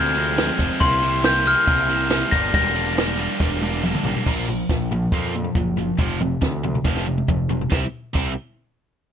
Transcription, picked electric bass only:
0.00 0.49 D2 loud
0.58 0.68 F1 medium
0.81 1.54 C2 loud
1.68 2.22 C2 loud
2.32 2.50 G1 medium
2.53 3.27 E1 loud
3.40 3.95 E1 loud
4.03 4.13 A1 medium
4.26 4.63 A#1 loud
4.69 5.06 A#1 medium
5.12 5.49 F2 medium
5.55 5.92 F#1 medium
5.99 6.36 F1 medium
6.42 6.79 D2 medium
6.84 7.21 F1 medium
7.28 7.65 F1 medium
7.72 7.84 C2 medium
8.15 8.35 C2 loud

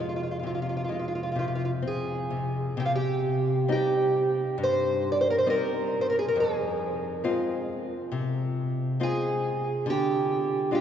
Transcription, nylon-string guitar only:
0.00 2.72 F2 medium
0.00 0.42 G#3 soft
0.43 0.87 C3 soft
0.89 1.34 G#3 soft
1.35 1.81 C3 soft
1.82 2.29 C4 soft
2.30 2.75 C3 soft
2.77 3.65 C3 medium
3.68 4.40 G3 soft
3.68 4.40 C4 soft
3.68 4.40 D#4 soft
4.58 5.44 G2 medium
5.46 6.18 G3 soft
5.46 6.18 C4 soft
5.46 6.18 D#4 medium
6.36 7.22 F2 medium
7.24 7.95 G#3 soft
7.24 7.95 C4 soft
7.24 7.95 F4 soft
8.12 8.98 C3 medium
9.00 9.69 G#3 soft
9.00 9.70 C4 soft
9.00 9.70 F4 medium
9.86 10.69 D3 medium
10.71 10.81 G#3 soft
10.71 10.81 D4 soft
10.71 10.81 F4 medium

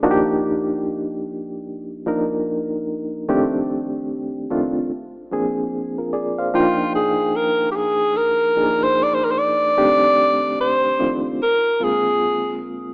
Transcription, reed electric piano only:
0.03 1.56 F3 medium
0.03 1.56 A#3 medium
0.03 1.56 D4 loud
0.03 1.57 D#4 medium
0.03 0.12 F#4 medium
0.11 1.60 G4 loud
2.06 3.21 F3 medium
2.06 3.21 A#3 medium
2.06 3.21 D4 medium
2.06 3.22 D#4 medium
2.06 3.22 A#4 medium
3.29 4.43 F2 loud
3.29 4.43 D#3 medium
3.29 4.43 A3 medium
3.29 4.43 C4 medium
3.29 4.44 D4 medium
3.29 4.44 G4 loud
4.50 4.90 F2 medium
4.50 4.90 D#3 medium
4.50 4.91 A3 medium
4.50 4.91 C4 medium
4.50 4.91 D4 medium
4.50 4.91 F4 medium
5.31 6.46 F3 medium
5.31 6.46 A#3 medium
5.31 6.46 C4 medium
5.31 6.46 D4 medium
5.31 5.72 G#4 medium
5.98 6.12 F4 soft
5.98 6.12 A#4 soft
6.13 6.37 G#4 medium
6.13 6.37 D5 medium
6.38 6.77 C5 medium
6.38 6.76 F5 medium
6.54 8.06 F3 medium
6.54 8.06 A#3 medium
6.54 8.06 D4 medium
6.54 8.07 D#4 medium
6.54 8.07 G5 medium
8.56 9.70 F3 medium
8.56 9.70 A#3 medium
8.56 9.70 D4 medium
8.56 9.71 D#4 medium
8.56 8.64 G#4 medium
8.64 9.74 A#4 medium
9.77 10.91 F2 medium
9.77 10.91 D#3 medium
9.77 10.92 A3 medium
9.77 10.92 C4 medium
9.77 10.92 D4 medium
9.77 10.92 G4 loud
10.99 11.39 F2 medium
10.99 11.39 D#3 medium
10.99 11.39 A3 medium
10.99 11.40 C4 medium
10.99 11.40 D4 medium
10.99 11.40 F4 medium
11.80 12.94 D3 medium
11.80 12.94 G#3 medium
11.80 12.94 A#3 medium
11.80 12.94 C4 medium
11.80 12.94 F4 medium

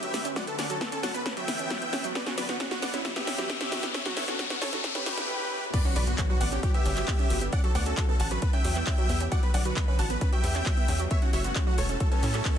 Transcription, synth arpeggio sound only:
0.03 0.12 F#3 loud
0.14 0.20 B3 medium
0.25 0.34 C#4 medium
0.36 0.46 F#3 loud
0.47 0.54 B3 medium
0.59 0.68 C#4 medium
0.70 0.79 F#3 loud
0.81 0.87 B3 medium
0.92 1.02 C#4 medium
1.03 1.13 F#3 loud
1.14 1.21 B3 medium
1.26 1.35 C#4 medium
1.37 1.46 F#3 loud
1.48 1.54 B3 medium
1.59 1.69 C#4 medium
1.71 1.80 F#3 loud
1.82 1.88 B3 medium
1.93 2.02 C#4 medium
2.04 2.14 F#3 loud
2.15 2.22 B3 medium
2.27 2.36 C#4 medium
2.38 2.47 F#3 loud
2.49 2.55 B3 medium
2.60 2.70 C#4 medium
2.71 2.81 F#3 loud
2.83 2.89 B3 medium
2.94 3.03 C#4 medium
3.05 3.14 F#3 loud
3.16 3.22 B3 medium
3.27 3.37 C#4 medium
3.38 3.48 F#3 loud
3.50 3.56 B3 medium
3.61 3.70 C#4 medium
3.72 3.82 F#3 loud
3.83 3.90 B3 medium
3.94 4.04 C#4 medium
4.06 4.15 F#3 loud
4.17 4.23 B3 medium
4.28 4.37 C#4 medium
4.39 4.49 F#3 loud
4.50 4.57 B3 medium
4.62 4.71 C#4 medium
4.73 4.82 F#3 loud
4.84 4.90 B3 medium
4.95 5.05 C#4 medium
5.07 5.16 F#3 loud
5.18 5.24 B3 medium
5.74 5.80 B3 medium
5.85 5.94 C#4 medium
5.96 6.05 F#3 loud
6.07 6.14 B3 medium
6.18 6.28 C#4 medium
6.30 6.39 F#3 loud
6.41 6.47 B3 medium
6.52 6.61 C#4 medium
6.63 6.73 F#3 loud
6.74 6.81 B3 medium
6.86 6.95 C#4 medium
6.97 7.06 F#3 loud
7.08 7.14 B3 medium
7.19 7.29 C#4 medium
7.30 7.40 F#3 loud
7.41 7.48 B3 medium
7.53 7.62 C#4 medium
7.64 7.73 F#3 loud
7.75 7.81 B3 medium
7.86 7.96 C#4 medium
7.97 8.07 F#3 loud
8.09 8.15 B3 medium
8.20 8.29 C#4 medium
8.31 8.41 F#3 loud
8.42 8.49 B3 medium
8.54 8.63 C#4 medium
8.65 8.74 F#3 loud
8.76 8.82 B3 medium
8.87 8.96 C#4 medium
8.98 9.08 F#3 loud
9.09 9.16 B3 medium
9.21 9.30 C#4 medium
9.32 9.41 F#3 loud
9.43 9.49 B3 medium
9.54 9.64 C#4 medium
9.65 9.75 F#3 loud
9.77 9.83 B3 medium
9.88 9.97 C#4 medium
9.99 10.08 F#3 loud
10.10 10.16 B3 medium
10.21 10.31 C#4 medium
10.33 10.42 F#3 loud
10.44 10.50 B3 medium
10.55 10.64 C#4 medium
10.66 10.76 F#3 loud
10.77 10.84 B3 medium
10.89 10.98 C#4 medium
11.00 11.09 F#3 loud
11.11 11.17 B3 medium
11.22 11.32 C#4 medium
11.33 11.43 F#3 loud
11.45 11.51 B3 medium
11.56 11.65 C#4 medium
11.67 11.76 F#3 loud
11.78 11.84 B3 medium
11.89 11.99 C#4 medium
12.00 12.10 F#3 loud
12.12 12.18 B3 medium
12.23 12.32 C#4 medium
12.34 12.44 F#3 loud
12.45 12.52 B3 medium

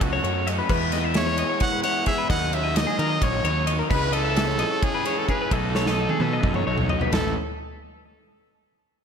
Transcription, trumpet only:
0.03 0.53 F#4 medium
1.17 1.59 C#5 loud
1.62 1.82 F#5 loud
1.83 2.05 F#5 loud
2.07 2.29 E5 loud
2.30 2.56 F#5 loud
2.54 2.79 E5 loud
2.77 3.25 D#5 loud
3.23 3.74 C#5 loud
3.93 4.15 B4 loud
4.14 4.85 A4 loud
4.84 5.20 G#4 loud
5.19 5.29 A4 medium
5.29 5.55 B4 medium
5.53 6.91 A4 medium
7.12 7.35 A4 medium

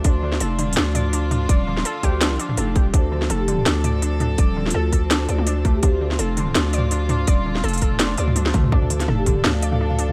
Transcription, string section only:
0.00 8.68 F3 medium
0.00 2.90 D4 medium
0.05 2.93 F4 medium
2.94 8.68 C4 medium
2.94 5.82 A4 medium
5.83 8.71 F4 medium
8.72 10.12 F3 medium
8.72 10.12 D4 medium
8.72 10.12 A4 medium

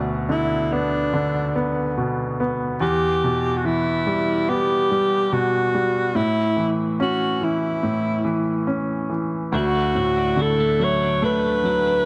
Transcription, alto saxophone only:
0.31 0.74 E4 medium
0.73 1.98 D4 medium
2.81 3.59 G4 medium
3.57 3.67 F#4 medium
3.66 4.51 E4 medium
4.49 5.34 G4 medium
5.33 6.18 F#4 medium
6.16 6.73 E4 medium
7.02 7.46 F#4 medium
7.44 8.70 E4 medium
9.57 10.43 F#4 medium
10.41 10.85 A4 medium
10.84 11.24 C#5 medium
11.25 12.05 B4 loud

